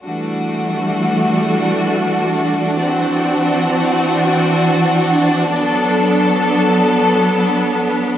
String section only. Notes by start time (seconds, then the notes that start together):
0.03 E3 G3 A3 D4 F#4
2.78 E3 C4 F#4
5.49 F#3 B3 A4